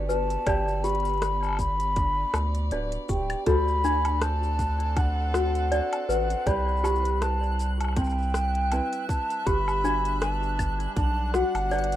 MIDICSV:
0, 0, Header, 1, 8, 480
1, 0, Start_track
1, 0, Key_signature, 1, "major"
1, 0, Tempo, 750000
1, 299, Time_signature, 4, 2, 24, 8
1, 7656, End_track
2, 0, Start_track
2, 0, Title_t, "Synth texture"
2, 0, Program_c, 0, 99
2, 2220, Note_on_c, 0, 90, 88
2, 7656, Note_off_c, 0, 90, 0
2, 7656, End_track
3, 0, Start_track
3, 0, Title_t, "Flute"
3, 0, Program_c, 1, 73
3, 56, Note_on_c, 1, 81, 103
3, 537, Note_on_c, 1, 83, 102
3, 546, Note_off_c, 1, 81, 0
3, 1013, Note_off_c, 1, 83, 0
3, 1017, Note_on_c, 1, 83, 106
3, 1712, Note_off_c, 1, 83, 0
3, 1984, Note_on_c, 1, 79, 80
3, 2205, Note_off_c, 1, 79, 0
3, 2222, Note_on_c, 1, 83, 99
3, 2701, Note_on_c, 1, 81, 95
3, 2710, Note_off_c, 1, 83, 0
3, 3181, Note_on_c, 1, 78, 90
3, 3191, Note_off_c, 1, 81, 0
3, 3894, Note_off_c, 1, 78, 0
3, 3898, Note_on_c, 1, 78, 84
3, 4141, Note_on_c, 1, 83, 100
3, 4151, Note_off_c, 1, 78, 0
3, 4620, Note_on_c, 1, 81, 95
3, 4630, Note_off_c, 1, 83, 0
3, 4935, Note_off_c, 1, 81, 0
3, 5098, Note_on_c, 1, 79, 105
3, 5793, Note_off_c, 1, 79, 0
3, 5818, Note_on_c, 1, 81, 98
3, 6059, Note_on_c, 1, 83, 108
3, 6068, Note_off_c, 1, 81, 0
3, 6534, Note_off_c, 1, 83, 0
3, 6538, Note_on_c, 1, 81, 96
3, 6993, Note_off_c, 1, 81, 0
3, 7020, Note_on_c, 1, 81, 101
3, 7243, Note_off_c, 1, 81, 0
3, 7258, Note_on_c, 1, 78, 99
3, 7656, Note_off_c, 1, 78, 0
3, 7656, End_track
4, 0, Start_track
4, 0, Title_t, "Toy piano"
4, 0, Program_c, 2, 8
4, 58, Note_on_c, 2, 71, 80
4, 288, Note_off_c, 2, 71, 0
4, 300, Note_on_c, 2, 74, 88
4, 448, Note_off_c, 2, 74, 0
4, 538, Note_on_c, 2, 67, 92
4, 768, Note_off_c, 2, 67, 0
4, 1741, Note_on_c, 2, 74, 73
4, 1969, Note_off_c, 2, 74, 0
4, 1980, Note_on_c, 2, 67, 76
4, 2209, Note_off_c, 2, 67, 0
4, 2218, Note_on_c, 2, 66, 85
4, 2368, Note_off_c, 2, 66, 0
4, 2460, Note_on_c, 2, 62, 90
4, 2689, Note_off_c, 2, 62, 0
4, 3417, Note_on_c, 2, 66, 69
4, 3647, Note_off_c, 2, 66, 0
4, 3658, Note_on_c, 2, 74, 104
4, 3888, Note_off_c, 2, 74, 0
4, 3898, Note_on_c, 2, 71, 80
4, 4128, Note_off_c, 2, 71, 0
4, 4140, Note_on_c, 2, 74, 89
4, 4288, Note_off_c, 2, 74, 0
4, 4375, Note_on_c, 2, 67, 98
4, 4606, Note_off_c, 2, 67, 0
4, 6058, Note_on_c, 2, 67, 91
4, 6208, Note_off_c, 2, 67, 0
4, 6300, Note_on_c, 2, 62, 94
4, 6529, Note_off_c, 2, 62, 0
4, 7261, Note_on_c, 2, 66, 73
4, 7489, Note_off_c, 2, 66, 0
4, 7497, Note_on_c, 2, 74, 103
4, 7656, Note_off_c, 2, 74, 0
4, 7656, End_track
5, 0, Start_track
5, 0, Title_t, "Ukulele"
5, 0, Program_c, 3, 24
5, 0, Note_on_c, 3, 62, 62
5, 0, Note_on_c, 3, 67, 88
5, 0, Note_on_c, 3, 71, 75
5, 56, Note_on_c, 3, 66, 64
5, 288, Note_off_c, 3, 67, 0
5, 292, Note_off_c, 3, 71, 0
5, 296, Note_on_c, 3, 67, 90
5, 300, Note_on_c, 3, 71, 72
5, 769, Note_off_c, 3, 71, 0
5, 777, Note_on_c, 3, 71, 63
5, 1255, Note_off_c, 3, 62, 0
5, 1258, Note_on_c, 3, 62, 71
5, 1735, Note_off_c, 3, 62, 0
5, 1738, Note_off_c, 3, 71, 0
5, 1738, Note_on_c, 3, 62, 63
5, 1739, Note_off_c, 3, 66, 0
5, 1741, Note_on_c, 3, 66, 64
5, 1745, Note_on_c, 3, 71, 66
5, 2214, Note_off_c, 3, 71, 0
5, 2217, Note_off_c, 3, 67, 0
5, 2217, Note_on_c, 3, 69, 86
5, 2219, Note_off_c, 3, 66, 0
5, 2221, Note_on_c, 3, 72, 72
5, 2454, Note_off_c, 3, 62, 0
5, 2456, Note_on_c, 3, 66, 65
5, 2697, Note_off_c, 3, 72, 0
5, 2697, Note_on_c, 3, 72, 63
5, 3176, Note_off_c, 3, 66, 0
5, 3178, Note_on_c, 3, 62, 70
5, 3649, Note_off_c, 3, 62, 0
5, 3656, Note_on_c, 3, 62, 60
5, 3660, Note_on_c, 3, 66, 66
5, 3676, Note_off_c, 3, 72, 0
5, 3890, Note_off_c, 3, 66, 0
5, 3898, Note_on_c, 3, 66, 67
5, 4137, Note_on_c, 3, 67, 85
5, 4138, Note_off_c, 3, 69, 0
5, 4141, Note_on_c, 3, 71, 75
5, 4191, Note_off_c, 3, 62, 0
5, 4192, Note_off_c, 3, 66, 0
5, 4378, Note_on_c, 3, 64, 63
5, 4618, Note_off_c, 3, 71, 0
5, 4618, Note_on_c, 3, 71, 71
5, 5095, Note_off_c, 3, 64, 0
5, 5098, Note_on_c, 3, 60, 73
5, 5570, Note_off_c, 3, 60, 0
5, 5578, Note_on_c, 3, 60, 68
5, 5580, Note_off_c, 3, 71, 0
5, 5582, Note_on_c, 3, 64, 68
5, 5586, Note_on_c, 3, 71, 74
5, 5811, Note_off_c, 3, 64, 0
5, 5819, Note_on_c, 3, 64, 63
5, 6059, Note_off_c, 3, 67, 0
5, 6062, Note_off_c, 3, 71, 0
5, 6062, Note_on_c, 3, 71, 72
5, 6112, Note_off_c, 3, 60, 0
5, 6113, Note_off_c, 3, 64, 0
5, 6297, Note_on_c, 3, 66, 65
5, 6529, Note_off_c, 3, 71, 0
5, 6537, Note_on_c, 3, 71, 72
5, 7018, Note_on_c, 3, 62, 70
5, 7495, Note_off_c, 3, 62, 0
5, 7497, Note_on_c, 3, 62, 69
5, 7498, Note_off_c, 3, 71, 0
5, 7499, Note_off_c, 3, 66, 0
5, 7502, Note_on_c, 3, 66, 64
5, 7506, Note_on_c, 3, 71, 71
5, 7656, Note_off_c, 3, 62, 0
5, 7656, Note_off_c, 3, 66, 0
5, 7656, Note_off_c, 3, 71, 0
5, 7656, End_track
6, 0, Start_track
6, 0, Title_t, "String quartet"
6, 0, Program_c, 4, 48
6, 0, Note_on_c, 4, 59, 75
6, 0, Note_on_c, 4, 74, 84
6, 2219, Note_off_c, 4, 59, 0
6, 2470, Note_on_c, 4, 69, 89
6, 2625, Note_on_c, 4, 60, 76
6, 4139, Note_on_c, 4, 55, 75
6, 4911, Note_off_c, 4, 74, 0
6, 4913, Note_off_c, 4, 69, 0
6, 5013, Note_on_c, 4, 76, 86
6, 6058, Note_off_c, 4, 60, 0
6, 6250, Note_on_c, 4, 62, 84
6, 7012, Note_off_c, 4, 76, 0
6, 7022, Note_on_c, 4, 78, 81
6, 7656, Note_off_c, 4, 55, 0
6, 7656, Note_off_c, 4, 62, 0
6, 7656, Note_off_c, 4, 78, 0
6, 7656, End_track
7, 0, Start_track
7, 0, Title_t, "Analog synth bass"
7, 0, Program_c, 5, 38
7, 0, Note_on_c, 5, 31, 95
7, 239, Note_off_c, 5, 31, 0
7, 297, Note_on_c, 5, 31, 98
7, 1439, Note_off_c, 5, 31, 0
7, 1497, Note_on_c, 5, 38, 97
7, 1735, Note_off_c, 5, 38, 0
7, 1739, Note_on_c, 5, 26, 81
7, 1905, Note_off_c, 5, 26, 0
7, 1978, Note_on_c, 5, 26, 84
7, 2145, Note_off_c, 5, 26, 0
7, 2218, Note_on_c, 5, 38, 90
7, 3718, Note_off_c, 5, 38, 0
7, 3897, Note_on_c, 5, 33, 93
7, 4065, Note_off_c, 5, 33, 0
7, 4137, Note_on_c, 5, 36, 101
7, 5638, Note_off_c, 5, 36, 0
7, 6058, Note_on_c, 5, 31, 97
7, 6960, Note_off_c, 5, 31, 0
7, 7017, Note_on_c, 5, 35, 85
7, 7318, Note_off_c, 5, 35, 0
7, 7390, Note_on_c, 5, 31, 93
7, 7656, Note_off_c, 5, 31, 0
7, 7656, End_track
8, 0, Start_track
8, 0, Title_t, "Drums"
8, 63, Note_on_c, 9, 82, 83
8, 127, Note_off_c, 9, 82, 0
8, 194, Note_on_c, 9, 42, 45
8, 197, Note_on_c, 9, 82, 32
8, 258, Note_off_c, 9, 42, 0
8, 261, Note_off_c, 9, 82, 0
8, 297, Note_on_c, 9, 36, 111
8, 298, Note_on_c, 9, 42, 58
8, 298, Note_on_c, 9, 77, 75
8, 302, Note_on_c, 9, 82, 42
8, 361, Note_off_c, 9, 36, 0
8, 362, Note_off_c, 9, 42, 0
8, 362, Note_off_c, 9, 77, 0
8, 366, Note_off_c, 9, 82, 0
8, 436, Note_on_c, 9, 82, 31
8, 500, Note_off_c, 9, 82, 0
8, 538, Note_on_c, 9, 42, 32
8, 541, Note_on_c, 9, 82, 77
8, 572, Note_off_c, 9, 42, 0
8, 572, Note_on_c, 9, 42, 26
8, 605, Note_off_c, 9, 82, 0
8, 607, Note_off_c, 9, 42, 0
8, 607, Note_on_c, 9, 42, 22
8, 640, Note_off_c, 9, 42, 0
8, 640, Note_on_c, 9, 42, 17
8, 673, Note_off_c, 9, 42, 0
8, 673, Note_on_c, 9, 42, 46
8, 677, Note_on_c, 9, 82, 31
8, 700, Note_off_c, 9, 42, 0
8, 700, Note_on_c, 9, 42, 11
8, 727, Note_off_c, 9, 42, 0
8, 727, Note_on_c, 9, 42, 10
8, 741, Note_off_c, 9, 82, 0
8, 753, Note_off_c, 9, 42, 0
8, 753, Note_on_c, 9, 42, 8
8, 780, Note_off_c, 9, 42, 0
8, 780, Note_on_c, 9, 37, 77
8, 780, Note_on_c, 9, 42, 58
8, 783, Note_on_c, 9, 82, 45
8, 844, Note_off_c, 9, 37, 0
8, 844, Note_off_c, 9, 42, 0
8, 847, Note_off_c, 9, 82, 0
8, 913, Note_on_c, 9, 77, 35
8, 916, Note_on_c, 9, 82, 29
8, 926, Note_off_c, 9, 77, 0
8, 926, Note_on_c, 9, 77, 37
8, 938, Note_off_c, 9, 77, 0
8, 938, Note_on_c, 9, 77, 45
8, 951, Note_off_c, 9, 77, 0
8, 951, Note_on_c, 9, 77, 49
8, 963, Note_off_c, 9, 77, 0
8, 963, Note_on_c, 9, 77, 54
8, 977, Note_off_c, 9, 77, 0
8, 977, Note_on_c, 9, 77, 59
8, 980, Note_off_c, 9, 82, 0
8, 991, Note_off_c, 9, 77, 0
8, 991, Note_on_c, 9, 77, 62
8, 1004, Note_off_c, 9, 77, 0
8, 1004, Note_on_c, 9, 77, 72
8, 1017, Note_on_c, 9, 36, 53
8, 1017, Note_on_c, 9, 42, 30
8, 1020, Note_on_c, 9, 82, 70
8, 1068, Note_off_c, 9, 77, 0
8, 1081, Note_off_c, 9, 36, 0
8, 1081, Note_off_c, 9, 42, 0
8, 1084, Note_off_c, 9, 82, 0
8, 1151, Note_on_c, 9, 42, 46
8, 1154, Note_on_c, 9, 82, 34
8, 1215, Note_off_c, 9, 42, 0
8, 1218, Note_off_c, 9, 82, 0
8, 1255, Note_on_c, 9, 42, 56
8, 1258, Note_on_c, 9, 36, 113
8, 1259, Note_on_c, 9, 82, 47
8, 1319, Note_off_c, 9, 42, 0
8, 1322, Note_off_c, 9, 36, 0
8, 1323, Note_off_c, 9, 82, 0
8, 1495, Note_on_c, 9, 37, 73
8, 1495, Note_on_c, 9, 42, 31
8, 1495, Note_on_c, 9, 77, 81
8, 1499, Note_on_c, 9, 82, 73
8, 1559, Note_off_c, 9, 37, 0
8, 1559, Note_off_c, 9, 42, 0
8, 1559, Note_off_c, 9, 77, 0
8, 1563, Note_off_c, 9, 82, 0
8, 1630, Note_on_c, 9, 42, 47
8, 1633, Note_on_c, 9, 82, 32
8, 1694, Note_off_c, 9, 42, 0
8, 1697, Note_off_c, 9, 82, 0
8, 1736, Note_on_c, 9, 42, 57
8, 1739, Note_on_c, 9, 82, 40
8, 1800, Note_off_c, 9, 42, 0
8, 1803, Note_off_c, 9, 82, 0
8, 1869, Note_on_c, 9, 42, 58
8, 1873, Note_on_c, 9, 82, 31
8, 1933, Note_off_c, 9, 42, 0
8, 1937, Note_off_c, 9, 82, 0
8, 1978, Note_on_c, 9, 36, 92
8, 1978, Note_on_c, 9, 82, 81
8, 2042, Note_off_c, 9, 36, 0
8, 2042, Note_off_c, 9, 82, 0
8, 2111, Note_on_c, 9, 42, 45
8, 2111, Note_on_c, 9, 77, 81
8, 2114, Note_on_c, 9, 82, 31
8, 2175, Note_off_c, 9, 42, 0
8, 2175, Note_off_c, 9, 77, 0
8, 2178, Note_off_c, 9, 82, 0
8, 2217, Note_on_c, 9, 42, 57
8, 2218, Note_on_c, 9, 36, 119
8, 2220, Note_on_c, 9, 82, 42
8, 2281, Note_off_c, 9, 42, 0
8, 2282, Note_off_c, 9, 36, 0
8, 2284, Note_off_c, 9, 82, 0
8, 2356, Note_on_c, 9, 82, 33
8, 2420, Note_off_c, 9, 82, 0
8, 2459, Note_on_c, 9, 82, 78
8, 2523, Note_off_c, 9, 82, 0
8, 2592, Note_on_c, 9, 42, 47
8, 2592, Note_on_c, 9, 77, 79
8, 2595, Note_on_c, 9, 82, 35
8, 2656, Note_off_c, 9, 42, 0
8, 2656, Note_off_c, 9, 77, 0
8, 2659, Note_off_c, 9, 82, 0
8, 2698, Note_on_c, 9, 37, 84
8, 2698, Note_on_c, 9, 42, 61
8, 2701, Note_on_c, 9, 82, 48
8, 2762, Note_off_c, 9, 37, 0
8, 2762, Note_off_c, 9, 42, 0
8, 2765, Note_off_c, 9, 82, 0
8, 2837, Note_on_c, 9, 82, 30
8, 2901, Note_off_c, 9, 82, 0
8, 2938, Note_on_c, 9, 36, 61
8, 2938, Note_on_c, 9, 42, 29
8, 2941, Note_on_c, 9, 82, 78
8, 3002, Note_off_c, 9, 36, 0
8, 3002, Note_off_c, 9, 42, 0
8, 3005, Note_off_c, 9, 82, 0
8, 3072, Note_on_c, 9, 42, 44
8, 3136, Note_off_c, 9, 42, 0
8, 3178, Note_on_c, 9, 36, 122
8, 3178, Note_on_c, 9, 42, 56
8, 3178, Note_on_c, 9, 77, 76
8, 3182, Note_on_c, 9, 82, 43
8, 3242, Note_off_c, 9, 36, 0
8, 3242, Note_off_c, 9, 42, 0
8, 3242, Note_off_c, 9, 77, 0
8, 3246, Note_off_c, 9, 82, 0
8, 3418, Note_on_c, 9, 37, 77
8, 3422, Note_on_c, 9, 82, 75
8, 3482, Note_off_c, 9, 37, 0
8, 3486, Note_off_c, 9, 82, 0
8, 3554, Note_on_c, 9, 42, 46
8, 3557, Note_on_c, 9, 82, 36
8, 3618, Note_off_c, 9, 42, 0
8, 3621, Note_off_c, 9, 82, 0
8, 3660, Note_on_c, 9, 42, 60
8, 3663, Note_on_c, 9, 82, 45
8, 3724, Note_off_c, 9, 42, 0
8, 3727, Note_off_c, 9, 82, 0
8, 3793, Note_on_c, 9, 42, 54
8, 3793, Note_on_c, 9, 77, 85
8, 3797, Note_on_c, 9, 82, 34
8, 3857, Note_off_c, 9, 42, 0
8, 3857, Note_off_c, 9, 77, 0
8, 3861, Note_off_c, 9, 82, 0
8, 3904, Note_on_c, 9, 82, 80
8, 3968, Note_off_c, 9, 82, 0
8, 4034, Note_on_c, 9, 42, 49
8, 4037, Note_on_c, 9, 82, 32
8, 4098, Note_off_c, 9, 42, 0
8, 4101, Note_off_c, 9, 82, 0
8, 4138, Note_on_c, 9, 36, 122
8, 4139, Note_on_c, 9, 42, 55
8, 4143, Note_on_c, 9, 82, 45
8, 4202, Note_off_c, 9, 36, 0
8, 4203, Note_off_c, 9, 42, 0
8, 4207, Note_off_c, 9, 82, 0
8, 4277, Note_on_c, 9, 82, 16
8, 4331, Note_off_c, 9, 82, 0
8, 4331, Note_on_c, 9, 82, 20
8, 4379, Note_on_c, 9, 77, 72
8, 4382, Note_off_c, 9, 82, 0
8, 4382, Note_on_c, 9, 82, 88
8, 4443, Note_off_c, 9, 77, 0
8, 4446, Note_off_c, 9, 82, 0
8, 4450, Note_on_c, 9, 82, 26
8, 4514, Note_off_c, 9, 82, 0
8, 4514, Note_on_c, 9, 42, 48
8, 4518, Note_on_c, 9, 82, 34
8, 4578, Note_off_c, 9, 42, 0
8, 4582, Note_off_c, 9, 82, 0
8, 4619, Note_on_c, 9, 37, 79
8, 4619, Note_on_c, 9, 42, 56
8, 4623, Note_on_c, 9, 82, 46
8, 4683, Note_off_c, 9, 37, 0
8, 4683, Note_off_c, 9, 42, 0
8, 4687, Note_off_c, 9, 82, 0
8, 4756, Note_on_c, 9, 82, 29
8, 4820, Note_off_c, 9, 82, 0
8, 4860, Note_on_c, 9, 42, 31
8, 4863, Note_on_c, 9, 82, 76
8, 4924, Note_off_c, 9, 42, 0
8, 4927, Note_off_c, 9, 82, 0
8, 4995, Note_on_c, 9, 42, 46
8, 4995, Note_on_c, 9, 77, 72
8, 4999, Note_on_c, 9, 82, 37
8, 5020, Note_off_c, 9, 77, 0
8, 5020, Note_on_c, 9, 77, 60
8, 5046, Note_off_c, 9, 77, 0
8, 5046, Note_on_c, 9, 77, 48
8, 5059, Note_off_c, 9, 42, 0
8, 5063, Note_off_c, 9, 82, 0
8, 5073, Note_off_c, 9, 77, 0
8, 5073, Note_on_c, 9, 77, 38
8, 5097, Note_off_c, 9, 77, 0
8, 5097, Note_on_c, 9, 42, 58
8, 5097, Note_on_c, 9, 77, 34
8, 5098, Note_on_c, 9, 36, 126
8, 5101, Note_on_c, 9, 82, 48
8, 5132, Note_off_c, 9, 77, 0
8, 5132, Note_on_c, 9, 77, 26
8, 5147, Note_off_c, 9, 82, 0
8, 5147, Note_on_c, 9, 82, 37
8, 5161, Note_off_c, 9, 42, 0
8, 5162, Note_off_c, 9, 36, 0
8, 5166, Note_off_c, 9, 77, 0
8, 5166, Note_on_c, 9, 77, 23
8, 5181, Note_off_c, 9, 82, 0
8, 5181, Note_on_c, 9, 82, 28
8, 5199, Note_off_c, 9, 77, 0
8, 5199, Note_on_c, 9, 77, 19
8, 5237, Note_off_c, 9, 82, 0
8, 5237, Note_on_c, 9, 82, 23
8, 5263, Note_off_c, 9, 77, 0
8, 5263, Note_off_c, 9, 82, 0
8, 5263, Note_on_c, 9, 82, 21
8, 5307, Note_off_c, 9, 82, 0
8, 5307, Note_on_c, 9, 82, 16
8, 5338, Note_on_c, 9, 37, 75
8, 5342, Note_off_c, 9, 82, 0
8, 5342, Note_on_c, 9, 82, 76
8, 5402, Note_off_c, 9, 37, 0
8, 5406, Note_off_c, 9, 82, 0
8, 5472, Note_on_c, 9, 42, 46
8, 5536, Note_off_c, 9, 42, 0
8, 5578, Note_on_c, 9, 42, 58
8, 5578, Note_on_c, 9, 77, 71
8, 5582, Note_on_c, 9, 82, 47
8, 5642, Note_off_c, 9, 42, 0
8, 5642, Note_off_c, 9, 77, 0
8, 5646, Note_off_c, 9, 82, 0
8, 5713, Note_on_c, 9, 42, 54
8, 5716, Note_on_c, 9, 82, 31
8, 5777, Note_off_c, 9, 42, 0
8, 5780, Note_off_c, 9, 82, 0
8, 5818, Note_on_c, 9, 36, 97
8, 5822, Note_on_c, 9, 82, 88
8, 5882, Note_off_c, 9, 36, 0
8, 5886, Note_off_c, 9, 82, 0
8, 5955, Note_on_c, 9, 42, 46
8, 5958, Note_on_c, 9, 82, 38
8, 6019, Note_off_c, 9, 42, 0
8, 6022, Note_off_c, 9, 82, 0
8, 6058, Note_on_c, 9, 36, 118
8, 6060, Note_on_c, 9, 42, 54
8, 6063, Note_on_c, 9, 82, 46
8, 6122, Note_off_c, 9, 36, 0
8, 6124, Note_off_c, 9, 42, 0
8, 6127, Note_off_c, 9, 82, 0
8, 6194, Note_on_c, 9, 77, 83
8, 6198, Note_on_c, 9, 82, 35
8, 6258, Note_off_c, 9, 77, 0
8, 6262, Note_off_c, 9, 82, 0
8, 6302, Note_on_c, 9, 82, 81
8, 6366, Note_off_c, 9, 82, 0
8, 6434, Note_on_c, 9, 42, 44
8, 6437, Note_on_c, 9, 82, 35
8, 6498, Note_off_c, 9, 42, 0
8, 6501, Note_off_c, 9, 82, 0
8, 6539, Note_on_c, 9, 37, 85
8, 6539, Note_on_c, 9, 42, 52
8, 6542, Note_on_c, 9, 82, 49
8, 6603, Note_off_c, 9, 37, 0
8, 6603, Note_off_c, 9, 42, 0
8, 6606, Note_off_c, 9, 82, 0
8, 6676, Note_on_c, 9, 82, 32
8, 6740, Note_off_c, 9, 82, 0
8, 6778, Note_on_c, 9, 36, 60
8, 6778, Note_on_c, 9, 42, 30
8, 6778, Note_on_c, 9, 77, 79
8, 6781, Note_on_c, 9, 82, 73
8, 6842, Note_off_c, 9, 36, 0
8, 6842, Note_off_c, 9, 42, 0
8, 6842, Note_off_c, 9, 77, 0
8, 6845, Note_off_c, 9, 82, 0
8, 6912, Note_on_c, 9, 42, 43
8, 6916, Note_on_c, 9, 82, 35
8, 6976, Note_off_c, 9, 42, 0
8, 6980, Note_off_c, 9, 82, 0
8, 7018, Note_on_c, 9, 36, 125
8, 7018, Note_on_c, 9, 42, 56
8, 7021, Note_on_c, 9, 82, 48
8, 7082, Note_off_c, 9, 36, 0
8, 7082, Note_off_c, 9, 42, 0
8, 7085, Note_off_c, 9, 82, 0
8, 7256, Note_on_c, 9, 37, 73
8, 7260, Note_on_c, 9, 82, 75
8, 7320, Note_off_c, 9, 37, 0
8, 7324, Note_off_c, 9, 82, 0
8, 7392, Note_on_c, 9, 42, 42
8, 7392, Note_on_c, 9, 77, 78
8, 7395, Note_on_c, 9, 82, 34
8, 7456, Note_off_c, 9, 42, 0
8, 7456, Note_off_c, 9, 77, 0
8, 7459, Note_off_c, 9, 82, 0
8, 7496, Note_on_c, 9, 42, 25
8, 7500, Note_on_c, 9, 82, 43
8, 7542, Note_off_c, 9, 42, 0
8, 7542, Note_on_c, 9, 42, 34
8, 7564, Note_off_c, 9, 82, 0
8, 7576, Note_off_c, 9, 42, 0
8, 7576, Note_on_c, 9, 42, 45
8, 7631, Note_off_c, 9, 42, 0
8, 7631, Note_on_c, 9, 42, 49
8, 7634, Note_on_c, 9, 82, 33
8, 7656, Note_off_c, 9, 42, 0
8, 7656, Note_off_c, 9, 82, 0
8, 7656, End_track
0, 0, End_of_file